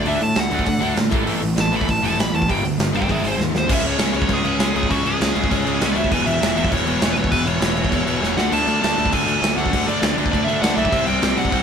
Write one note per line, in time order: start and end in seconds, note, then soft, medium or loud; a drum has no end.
0.05 0.17 D2 medium
0.05 0.19 D3 medium
0.05 0.19 A3 medium
0.05 0.21 D4 loud
0.05 0.22 E5 medium
0.05 open hi-hat medium
0.20 0.32 A2 medium
0.20 0.34 D3 medium
0.20 0.34 A3 medium
0.20 0.39 A5 loud
0.20 open hi-hat medium
0.35 0.48 D2 medium
0.35 0.49 D3 medium
0.35 0.50 A3 medium
0.35 snare loud
0.35 open hi-hat medium
0.39 0.97 F#5 medium
0.50 0.63 D2 medium
0.50 0.63 D3 loud
0.50 0.63 A3 loud
0.50 0.66 D4 loud
0.50 open hi-hat medium
0.59 kick medium
0.64 0.78 D3 medium
0.64 0.79 A3 medium
0.64 kick medium
0.64 open hi-hat medium
0.69 0.81 D3 medium
0.69 0.81 A3 medium
0.79 0.93 D2 medium
0.79 0.94 D3 medium
0.79 0.94 A3 loud
0.79 0.96 D4 loud
0.79 open hi-hat medium
0.95 1.09 A2 medium
0.95 1.09 D3 medium
0.95 1.10 A3 medium
0.95 snare loud
0.95 open hi-hat medium
1.10 1.23 A1 medium
1.10 1.23 A2 medium
1.10 1.24 E3 medium
1.10 1.25 A3 loud
1.10 kick loud
1.10 open hi-hat medium
1.24 1.39 A1 medium
1.24 1.39 A2 medium
1.24 1.40 E3 medium
1.24 1.41 A3 loud
1.24 open hi-hat medium
1.40 1.53 A1 medium
1.40 1.55 A2 medium
1.40 1.55 E3 medium
1.40 open hi-hat medium
1.56 1.79 A1 medium
1.56 1.70 A2 medium
1.56 1.71 E3 medium
1.56 snare loud
1.56 open hi-hat medium
1.60 1.74 A5 medium
1.71 1.86 A2 medium
1.71 1.86 E3 medium
1.71 1.87 A3 loud
1.71 open hi-hat medium
1.76 1.90 B5 medium
1.81 kick medium
1.87 1.99 A1 medium
1.87 2.01 A2 medium
1.87 2.01 E3 medium
1.87 2.04 A5 medium
1.87 kick loud
1.87 open hi-hat medium
2.02 2.14 E1 medium
2.02 2.17 A2 medium
2.02 2.17 E3 loud
2.02 2.18 A3 loud
2.02 2.19 A5 medium
2.02 open hi-hat medium
2.18 2.29 A1 medium
2.18 2.32 A2 medium
2.18 2.32 E3 medium
2.18 2.34 B5 medium
2.18 snare loud
2.18 open hi-hat medium
2.33 2.44 E2 medium
2.33 2.47 A2 medium
2.33 2.48 E3 medium
2.33 2.49 A5 loud
2.33 open hi-hat medium
2.42 kick medium
2.48 2.60 G1 medium
2.48 2.62 G2 medium
2.48 2.62 D3 loud
2.48 2.63 G3 medium
2.48 2.64 G5 loud
2.48 kick loud
2.48 open hi-hat medium
2.63 2.75 D2 medium
2.63 2.77 G2 medium
2.63 2.77 D3 medium
2.63 open hi-hat medium
2.78 2.90 G1 medium
2.78 2.91 G2 medium
2.78 2.92 D3 medium
2.78 snare loud
2.78 open hi-hat medium
2.92 3.06 G1 medium
2.92 3.06 G2 medium
2.92 3.07 D3 loud
2.92 3.08 G3 loud
2.92 3.10 B4 medium
2.92 open hi-hat medium
2.97 3.10 G5 loud
3.02 kick medium
3.07 3.20 G#1 medium
3.07 3.20 G#2 medium
3.07 3.21 D#3 loud
3.07 3.21 G#3 loud
3.07 kick medium
3.07 open hi-hat medium
3.11 3.24 G#4 medium
3.11 3.25 E5 medium
3.22 3.35 G#1 loud
3.22 3.36 G#2 medium
3.22 3.37 D#3 medium
3.22 3.38 G#3 medium
3.22 open hi-hat medium
3.27 3.40 C5 medium
3.37 3.69 D#2 medium
3.37 3.51 G#2 medium
3.37 3.51 D#3 medium
3.37 snare medium
3.52 3.67 G#2 medium
3.52 3.66 D#3 medium
3.52 snare medium
3.57 3.72 C5 medium
3.66 3.81 C#2 loud
3.66 3.83 C#3 medium
3.66 3.83 G#3 loud
3.66 3.82 C#4 loud
3.66 kick loud
3.66 crash loud
3.66 crash medium
3.73 3.87 E5 medium
3.82 3.96 C#2 medium
3.82 3.97 C#3 medium
3.82 3.98 G#3 medium
3.82 3.99 C#4 loud
3.82 crash medium
3.87 4.15 C#5 medium
3.98 4.11 C#2 medium
3.98 4.13 C#3 medium
3.98 4.13 G#3 medium
3.98 4.11 C#4 medium
3.98 snare loud
3.98 crash medium
4.13 4.26 C#2 medium
4.13 4.27 C#3 medium
4.13 4.29 G#3 loud
4.13 4.28 C#4 loud
4.13 4.31 C#5 medium
4.13 crash medium
4.22 kick loud
4.28 4.41 C#2 loud
4.28 4.43 C#3 medium
4.28 4.44 G#3 medium
4.28 4.42 C#4 loud
4.28 kick loud
4.28 crash medium
4.33 4.76 G#4 medium
4.43 4.56 C#2 loud
4.43 4.58 C#3 medium
4.43 4.59 G#3 medium
4.43 4.59 C#4 loud
4.43 crash medium
4.59 4.71 C#2 loud
4.59 4.75 C#3 medium
4.59 4.75 G#3 loud
4.59 4.73 C#4 medium
4.59 snare loud
4.59 crash medium
4.74 4.87 C#2 loud
4.74 4.88 C#3 medium
4.74 4.90 G#3 medium
4.74 4.89 C#4 loud
4.74 4.92 G#4 medium
4.74 crash medium
4.83 kick medium
4.89 5.02 C#2 medium
4.89 5.04 C#3 loud
4.89 5.04 G#3 loud
4.89 5.02 C#4 loud
4.89 5.06 F#4 medium
4.89 kick loud
4.89 crash medium
5.04 5.16 C#2 loud
5.04 5.17 C#3 medium
5.04 5.19 G#3 medium
5.04 5.18 C#4 loud
5.04 5.89 G#4 medium
5.04 crash medium
5.19 5.32 C#2 loud
5.19 5.34 C#3 loud
5.19 5.34 G#3 medium
5.19 5.32 C#4 medium
5.19 snare loud
5.19 crash medium
5.34 5.47 C#2 loud
5.34 5.48 C#3 medium
5.34 5.50 G#3 loud
5.34 5.49 C#4 loud
5.34 crash medium
5.44 kick medium
5.49 5.62 C#2 loud
5.49 5.65 C#3 medium
5.49 5.65 G#3 medium
5.49 5.64 C#4 medium
5.49 kick medium
5.49 crash medium
5.65 5.77 C#2 medium
5.65 5.78 C#3 medium
5.65 5.80 G#3 loud
5.65 5.79 C#4 loud
5.65 crash medium
5.79 5.93 C#2 loud
5.79 5.95 C#3 medium
5.79 5.95 G#3 loud
5.79 5.94 C#4 loud
5.79 snare loud
5.79 crash medium
5.92 6.11 G#3 loud
5.92 6.10 C#4 loud
5.92 5.96 D5 medium
5.96 6.13 D2 loud
5.96 6.10 C#3 medium
5.96 6.12 E5 medium
5.96 crash medium
6.04 kick medium
6.10 6.23 E1 loud
6.10 6.25 E2 loud
6.10 6.24 B2 loud
6.10 6.24 E3 loud
6.10 6.26 G#5 loud
6.10 kick loud
6.10 crash loud
6.25 6.38 E1 loud
6.25 6.39 E2 medium
6.25 6.40 B2 loud
6.25 6.40 E3 loud
6.25 6.56 E5 loud
6.25 crash medium
6.40 6.53 E1 loud
6.40 6.55 E2 medium
6.40 6.54 B2 medium
6.40 6.54 E3 medium
6.40 snare loud
6.40 crash medium
6.55 6.68 E1 medium
6.55 6.70 E2 medium
6.55 6.71 B2 loud
6.55 6.72 E3 loud
6.55 6.72 E5 loud
6.55 crash medium
6.65 kick loud
6.71 6.83 E1 loud
6.71 6.87 E2 medium
6.71 6.86 B2 medium
6.71 6.85 E3 medium
6.71 7.13 C#5 medium
6.71 kick loud
6.71 crash medium
6.85 6.97 E1 medium
6.85 6.99 E2 medium
6.85 7.00 B2 loud
6.85 7.00 E3 loud
6.85 crash medium
7.00 7.13 E1 loud
7.00 7.16 E2 loud
7.00 7.15 B2 medium
7.00 7.14 E3 loud
7.00 snare loud
7.00 crash medium
7.12 7.30 B2 loud
7.12 7.31 E3 loud
7.12 7.16 B4 medium
7.12 7.30 C#5 medium
7.12 crash medium
7.16 7.28 E1 loud
7.16 7.30 E2 medium
7.24 kick medium
7.31 7.43 E1 medium
7.31 7.46 E2 medium
7.31 7.45 B2 loud
7.31 7.44 E3 loud
7.31 7.47 B4 loud
7.31 kick loud
7.31 crash medium
7.45 7.58 E1 medium
7.45 7.59 E2 medium
7.45 7.60 B2 medium
7.45 7.60 E3 loud
7.45 8.40 C#5 loud
7.45 crash medium
7.60 7.73 E1 loud
7.60 7.76 E2 medium
7.60 7.75 B2 loud
7.60 7.74 E3 medium
7.60 snare loud
7.60 crash medium
7.76 7.87 E1 medium
7.76 7.90 E2 loud
7.76 7.90 B2 loud
7.76 7.91 E3 loud
7.76 crash medium
7.84 kick medium
7.91 8.03 E1 loud
7.91 8.06 E2 medium
7.91 8.06 B2 loud
7.91 8.05 E3 loud
7.91 kick loud
7.91 crash medium
8.06 8.18 E1 medium
8.06 8.19 E2 medium
8.06 8.20 B2 medium
8.06 8.20 E3 loud
8.06 crash medium
8.20 8.33 E1 medium
8.20 8.35 E2 loud
8.20 8.35 B2 medium
8.20 8.36 E3 loud
8.20 snare medium
8.36 8.48 D2 loud
8.36 8.52 D3 loud
8.36 8.51 A3 loud
8.36 8.51 D4 loud
8.36 8.53 F#5 loud
8.36 snare loud
8.51 8.63 D2 loud
8.51 8.66 D3 medium
8.51 8.66 A3 medium
8.51 8.67 D4 loud
8.51 8.81 A5 loud
8.51 splash medium
8.51 crash medium
8.66 8.79 D2 loud
8.66 8.82 D3 medium
8.66 8.81 A3 loud
8.66 8.81 D4 medium
8.66 crash medium
8.81 8.94 D2 loud
8.81 8.95 D3 medium
8.81 8.95 A3 loud
8.81 8.96 D4 medium
8.81 9.13 A5 loud
8.81 snare loud
8.81 crash medium
8.96 9.09 D2 loud
8.96 9.11 D3 loud
8.96 9.11 A3 loud
8.96 9.10 D4 loud
8.96 crash medium
9.06 kick medium
9.11 9.24 D2 loud
9.11 9.25 D3 medium
9.11 9.26 A3 medium
9.11 9.26 D4 medium
9.11 9.57 G#5 loud
9.11 kick medium
9.11 crash medium
9.26 9.38 D2 medium
9.26 9.41 D3 loud
9.26 9.41 A3 loud
9.26 9.40 D4 loud
9.26 crash medium
9.42 9.53 D2 medium
9.42 9.55 D3 medium
9.42 9.56 A3 medium
9.42 9.56 D4 loud
9.42 snare loud
9.42 crash medium
9.56 9.69 D2 medium
9.56 9.71 D3 medium
9.56 9.70 A3 loud
9.56 9.70 D4 loud
9.56 9.88 F#5 loud
9.56 crash medium
9.66 kick medium
9.71 9.84 D2 loud
9.71 9.85 D3 medium
9.71 9.86 A3 loud
9.71 9.87 D4 loud
9.71 kick loud
9.71 crash medium
9.86 9.99 D2 loud
9.86 10.02 D3 medium
9.86 10.02 A3 loud
9.86 10.01 D4 loud
9.86 10.15 D5 loud
9.86 crash medium
10.02 10.14 D2 loud
10.02 10.15 D3 medium
10.02 10.16 A3 medium
10.02 10.16 D4 loud
10.02 snare loud
10.02 crash medium
10.16 10.29 D2 medium
10.16 10.30 D3 loud
10.16 10.30 A3 loud
10.16 10.29 D4 loud
10.16 crash medium
10.26 kick loud
10.30 10.44 D2 loud
10.30 10.45 D3 medium
10.30 10.46 A3 medium
10.30 10.46 D4 loud
10.30 10.44 D5 medium
10.30 kick loud
10.30 crash medium
10.44 10.59 D2 loud
10.44 10.62 D3 medium
10.44 10.61 A3 loud
10.44 10.60 D4 loud
10.44 10.61 E5 medium
10.49 crash medium
10.62 10.73 D2 loud
10.62 10.75 D3 medium
10.62 10.76 A3 medium
10.62 10.76 D4 loud
10.62 10.76 F#5 loud
10.62 snare loud
10.62 crash medium
10.76 10.89 B1 loud
10.76 10.90 D3 medium
10.76 10.91 A3 loud
10.76 10.91 D4 loud
10.76 11.07 E5 loud
10.76 crash medium
10.85 kick medium
10.91 11.04 C2 medium
10.91 11.06 C3 loud
10.91 11.06 G3 loud
10.91 11.05 C4 loud
10.91 kick loud
10.91 crash medium
11.06 11.19 C2 medium
11.06 11.21 C3 medium
11.06 11.21 G3 loud
11.06 11.22 C4 loud
11.06 11.37 G5 loud
11.06 crash medium
11.22 11.34 C2 loud
11.22 11.36 C3 medium
11.22 11.36 G3 loud
11.22 11.35 C4 loud
11.22 snare loud
11.22 crash medium
11.37 11.49 C2 loud
11.37 11.50 C3 medium
11.37 11.51 G3 loud
11.37 11.52 C4 loud
11.37 11.63 F#5 loud
11.37 crash medium
11.45 kick medium
11.51 11.63 C2 medium
11.51 11.63 C3 medium
11.51 11.63 G3 medium
11.51 11.63 C4 loud
11.51 kick loud
11.51 crash medium